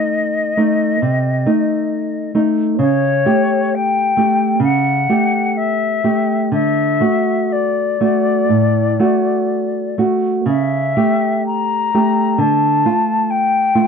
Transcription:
0, 0, Header, 1, 3, 480
1, 0, Start_track
1, 0, Tempo, 884956
1, 1515, Time_signature, 4, 2, 24, 8
1, 1515, Tempo, 943396
1, 1995, Tempo, 892857
1, 2475, Tempo, 955414
1, 3435, Tempo, 986842
1, 5835, Tempo, 909091
1, 7101, End_track
2, 0, Start_track
2, 0, Title_t, "Flute"
2, 0, Program_c, 0, 73
2, 0, Note_on_c, 0, 75, 51
2, 1250, Note_off_c, 0, 75, 0
2, 1506, Note_on_c, 0, 73, 61
2, 2000, Note_on_c, 0, 79, 64
2, 2008, Note_off_c, 0, 73, 0
2, 2474, Note_off_c, 0, 79, 0
2, 2477, Note_on_c, 0, 78, 66
2, 2947, Note_on_c, 0, 76, 62
2, 2955, Note_off_c, 0, 78, 0
2, 3424, Note_off_c, 0, 76, 0
2, 3427, Note_on_c, 0, 76, 62
2, 3913, Note_on_c, 0, 74, 43
2, 3920, Note_off_c, 0, 76, 0
2, 5112, Note_off_c, 0, 74, 0
2, 5347, Note_on_c, 0, 76, 52
2, 5816, Note_off_c, 0, 76, 0
2, 5830, Note_on_c, 0, 82, 58
2, 6322, Note_on_c, 0, 81, 50
2, 6330, Note_off_c, 0, 82, 0
2, 6800, Note_on_c, 0, 79, 59
2, 6808, Note_off_c, 0, 81, 0
2, 7101, Note_off_c, 0, 79, 0
2, 7101, End_track
3, 0, Start_track
3, 0, Title_t, "Nylon-string guitar"
3, 0, Program_c, 1, 24
3, 0, Note_on_c, 1, 57, 33
3, 0, Note_on_c, 1, 63, 36
3, 288, Note_off_c, 1, 57, 0
3, 291, Note_off_c, 1, 63, 0
3, 310, Note_on_c, 1, 57, 34
3, 313, Note_on_c, 1, 63, 36
3, 531, Note_off_c, 1, 57, 0
3, 532, Note_off_c, 1, 63, 0
3, 554, Note_on_c, 1, 48, 40
3, 788, Note_off_c, 1, 48, 0
3, 792, Note_on_c, 1, 57, 32
3, 794, Note_on_c, 1, 63, 38
3, 1249, Note_off_c, 1, 57, 0
3, 1249, Note_off_c, 1, 63, 0
3, 1273, Note_on_c, 1, 57, 35
3, 1276, Note_on_c, 1, 63, 38
3, 1494, Note_off_c, 1, 57, 0
3, 1494, Note_off_c, 1, 63, 0
3, 1512, Note_on_c, 1, 49, 48
3, 1747, Note_off_c, 1, 49, 0
3, 1751, Note_on_c, 1, 57, 40
3, 1753, Note_on_c, 1, 67, 44
3, 2212, Note_off_c, 1, 57, 0
3, 2213, Note_off_c, 1, 67, 0
3, 2228, Note_on_c, 1, 57, 36
3, 2235, Note_on_c, 1, 67, 38
3, 2450, Note_off_c, 1, 57, 0
3, 2454, Note_off_c, 1, 67, 0
3, 2458, Note_on_c, 1, 49, 43
3, 2693, Note_off_c, 1, 49, 0
3, 2708, Note_on_c, 1, 57, 36
3, 2711, Note_on_c, 1, 67, 40
3, 3171, Note_off_c, 1, 57, 0
3, 3172, Note_off_c, 1, 67, 0
3, 3184, Note_on_c, 1, 57, 34
3, 3185, Note_on_c, 1, 67, 34
3, 3412, Note_off_c, 1, 57, 0
3, 3413, Note_off_c, 1, 67, 0
3, 3423, Note_on_c, 1, 50, 41
3, 3660, Note_on_c, 1, 57, 34
3, 3661, Note_off_c, 1, 50, 0
3, 3664, Note_on_c, 1, 66, 37
3, 4131, Note_off_c, 1, 57, 0
3, 4133, Note_off_c, 1, 66, 0
3, 4148, Note_on_c, 1, 57, 31
3, 4151, Note_on_c, 1, 66, 33
3, 4376, Note_off_c, 1, 57, 0
3, 4376, Note_off_c, 1, 66, 0
3, 4385, Note_on_c, 1, 45, 37
3, 4625, Note_off_c, 1, 45, 0
3, 4629, Note_on_c, 1, 57, 31
3, 4632, Note_on_c, 1, 66, 34
3, 5089, Note_off_c, 1, 57, 0
3, 5090, Note_off_c, 1, 66, 0
3, 5108, Note_on_c, 1, 57, 29
3, 5113, Note_on_c, 1, 66, 35
3, 5328, Note_off_c, 1, 57, 0
3, 5331, Note_off_c, 1, 66, 0
3, 5340, Note_on_c, 1, 49, 44
3, 5581, Note_off_c, 1, 49, 0
3, 5588, Note_on_c, 1, 57, 36
3, 5589, Note_on_c, 1, 67, 36
3, 6060, Note_off_c, 1, 67, 0
3, 6061, Note_off_c, 1, 57, 0
3, 6083, Note_on_c, 1, 57, 35
3, 6085, Note_on_c, 1, 67, 38
3, 6304, Note_off_c, 1, 57, 0
3, 6304, Note_off_c, 1, 67, 0
3, 6315, Note_on_c, 1, 50, 47
3, 6553, Note_off_c, 1, 50, 0
3, 6562, Note_on_c, 1, 57, 33
3, 6565, Note_on_c, 1, 65, 37
3, 7015, Note_off_c, 1, 57, 0
3, 7017, Note_off_c, 1, 65, 0
3, 7037, Note_on_c, 1, 57, 34
3, 7038, Note_on_c, 1, 65, 38
3, 7101, Note_off_c, 1, 57, 0
3, 7101, Note_off_c, 1, 65, 0
3, 7101, End_track
0, 0, End_of_file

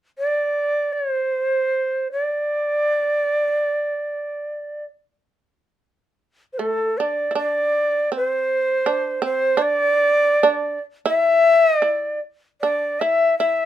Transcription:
0, 0, Header, 1, 3, 480
1, 0, Start_track
1, 0, Tempo, 927357
1, 537, Time_signature, 2, 2, 24, 8
1, 1486, Tempo, 949367
1, 2926, Tempo, 868307
1, 3406, Tempo, 773196
1, 4366, Tempo, 732601
1, 6286, Tempo, 773196
1, 7894, End_track
2, 0, Start_track
2, 0, Title_t, "Shakuhachi"
2, 0, Program_c, 0, 77
2, 95, Note_on_c, 0, 74, 65
2, 481, Note_on_c, 0, 73, 68
2, 488, Note_off_c, 0, 74, 0
2, 574, Note_off_c, 0, 73, 0
2, 574, Note_on_c, 0, 72, 68
2, 1094, Note_off_c, 0, 72, 0
2, 1097, Note_on_c, 0, 74, 67
2, 2485, Note_off_c, 0, 74, 0
2, 3375, Note_on_c, 0, 72, 35
2, 3402, Note_on_c, 0, 69, 63
2, 3411, Note_off_c, 0, 72, 0
2, 3649, Note_on_c, 0, 74, 57
2, 3658, Note_off_c, 0, 69, 0
2, 3891, Note_off_c, 0, 74, 0
2, 3896, Note_on_c, 0, 74, 65
2, 4345, Note_off_c, 0, 74, 0
2, 4384, Note_on_c, 0, 72, 76
2, 5070, Note_off_c, 0, 72, 0
2, 5096, Note_on_c, 0, 72, 72
2, 5340, Note_on_c, 0, 74, 91
2, 5350, Note_off_c, 0, 72, 0
2, 6121, Note_off_c, 0, 74, 0
2, 6291, Note_on_c, 0, 76, 94
2, 6651, Note_off_c, 0, 76, 0
2, 6651, Note_on_c, 0, 75, 94
2, 6738, Note_off_c, 0, 75, 0
2, 6738, Note_on_c, 0, 74, 94
2, 6990, Note_off_c, 0, 74, 0
2, 7247, Note_on_c, 0, 74, 67
2, 7488, Note_on_c, 0, 76, 68
2, 7497, Note_off_c, 0, 74, 0
2, 7723, Note_off_c, 0, 76, 0
2, 7727, Note_on_c, 0, 76, 77
2, 7894, Note_off_c, 0, 76, 0
2, 7894, End_track
3, 0, Start_track
3, 0, Title_t, "Shamisen"
3, 0, Program_c, 1, 106
3, 3409, Note_on_c, 1, 57, 48
3, 3635, Note_off_c, 1, 57, 0
3, 3662, Note_on_c, 1, 62, 50
3, 3841, Note_off_c, 1, 62, 0
3, 3854, Note_on_c, 1, 64, 36
3, 3880, Note_off_c, 1, 64, 0
3, 3882, Note_on_c, 1, 62, 55
3, 4338, Note_off_c, 1, 62, 0
3, 4356, Note_on_c, 1, 60, 54
3, 4820, Note_off_c, 1, 60, 0
3, 4843, Note_on_c, 1, 62, 59
3, 5067, Note_off_c, 1, 62, 0
3, 5077, Note_on_c, 1, 60, 60
3, 5304, Note_off_c, 1, 60, 0
3, 5308, Note_on_c, 1, 62, 70
3, 5837, Note_off_c, 1, 62, 0
3, 5872, Note_on_c, 1, 62, 64
3, 6097, Note_off_c, 1, 62, 0
3, 6280, Note_on_c, 1, 64, 63
3, 6742, Note_off_c, 1, 64, 0
3, 6755, Note_on_c, 1, 64, 53
3, 6989, Note_off_c, 1, 64, 0
3, 7258, Note_on_c, 1, 62, 61
3, 7482, Note_off_c, 1, 62, 0
3, 7495, Note_on_c, 1, 64, 58
3, 7717, Note_off_c, 1, 64, 0
3, 7736, Note_on_c, 1, 64, 56
3, 7894, Note_off_c, 1, 64, 0
3, 7894, End_track
0, 0, End_of_file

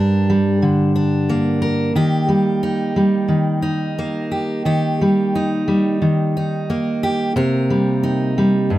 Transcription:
0, 0, Header, 1, 2, 480
1, 0, Start_track
1, 0, Tempo, 671892
1, 1390, Time_signature, 4, 2, 24, 8
1, 6275, End_track
2, 0, Start_track
2, 0, Title_t, "Steel-string acoustic guitar"
2, 0, Program_c, 0, 25
2, 0, Note_on_c, 0, 43, 76
2, 0, Note_on_c, 0, 55, 59
2, 0, Note_on_c, 0, 62, 60
2, 0, Note_on_c, 0, 70, 64
2, 209, Note_off_c, 0, 55, 0
2, 212, Note_on_c, 0, 55, 60
2, 445, Note_on_c, 0, 50, 62
2, 674, Note_off_c, 0, 62, 0
2, 683, Note_on_c, 0, 62, 54
2, 925, Note_on_c, 0, 58, 58
2, 1153, Note_off_c, 0, 70, 0
2, 1156, Note_on_c, 0, 70, 61
2, 1360, Note_off_c, 0, 43, 0
2, 1366, Note_off_c, 0, 50, 0
2, 1395, Note_off_c, 0, 62, 0
2, 1396, Note_on_c, 0, 51, 68
2, 1399, Note_off_c, 0, 70, 0
2, 1402, Note_on_c, 0, 67, 71
2, 1630, Note_off_c, 0, 55, 0
2, 1633, Note_on_c, 0, 55, 51
2, 1878, Note_on_c, 0, 63, 55
2, 2113, Note_off_c, 0, 55, 0
2, 2116, Note_on_c, 0, 55, 53
2, 2343, Note_off_c, 0, 51, 0
2, 2346, Note_on_c, 0, 51, 52
2, 2586, Note_off_c, 0, 63, 0
2, 2589, Note_on_c, 0, 63, 57
2, 2844, Note_off_c, 0, 58, 0
2, 2847, Note_on_c, 0, 58, 57
2, 3080, Note_off_c, 0, 67, 0
2, 3083, Note_on_c, 0, 67, 54
2, 3292, Note_off_c, 0, 51, 0
2, 3324, Note_on_c, 0, 51, 70
2, 3327, Note_off_c, 0, 67, 0
2, 3329, Note_on_c, 0, 67, 58
2, 3579, Note_off_c, 0, 55, 0
2, 3582, Note_on_c, 0, 55, 56
2, 3822, Note_off_c, 0, 63, 0
2, 3825, Note_on_c, 0, 63, 56
2, 4053, Note_off_c, 0, 55, 0
2, 4056, Note_on_c, 0, 55, 58
2, 4290, Note_off_c, 0, 51, 0
2, 4298, Note_on_c, 0, 51, 55
2, 4537, Note_off_c, 0, 63, 0
2, 4549, Note_on_c, 0, 63, 59
2, 4782, Note_off_c, 0, 58, 0
2, 4785, Note_on_c, 0, 58, 53
2, 5008, Note_off_c, 0, 67, 0
2, 5024, Note_on_c, 0, 67, 62
2, 5221, Note_off_c, 0, 55, 0
2, 5222, Note_off_c, 0, 51, 0
2, 5228, Note_off_c, 0, 63, 0
2, 5255, Note_off_c, 0, 67, 0
2, 5257, Note_on_c, 0, 48, 68
2, 5262, Note_on_c, 0, 70, 64
2, 5503, Note_on_c, 0, 55, 58
2, 5740, Note_on_c, 0, 63, 53
2, 5975, Note_off_c, 0, 55, 0
2, 5985, Note_on_c, 0, 55, 63
2, 6211, Note_off_c, 0, 48, 0
2, 6217, Note_on_c, 0, 43, 64
2, 6275, Note_off_c, 0, 43, 0
2, 6275, Note_off_c, 0, 55, 0
2, 6275, Note_off_c, 0, 58, 0
2, 6275, Note_off_c, 0, 63, 0
2, 6275, Note_off_c, 0, 70, 0
2, 6275, End_track
0, 0, End_of_file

